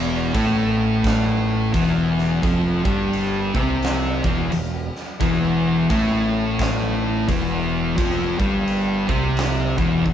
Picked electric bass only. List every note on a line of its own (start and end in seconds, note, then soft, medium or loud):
0.00 0.31 E1 medium
0.34 1.69 A1 medium
1.74 2.39 E1 medium
2.43 2.82 F1 loud
2.85 3.50 G1 medium
3.55 4.20 C2 medium
4.24 4.50 E1 loud
4.52 4.91 E1 medium
5.21 5.86 E1 medium
5.90 7.25 A1 loud
7.29 7.94 E1 loud
7.98 8.37 F1 medium
8.40 9.05 G1 medium
9.09 9.74 C2 medium
9.78 10.03 E1 loud
10.06 10.13 E1 medium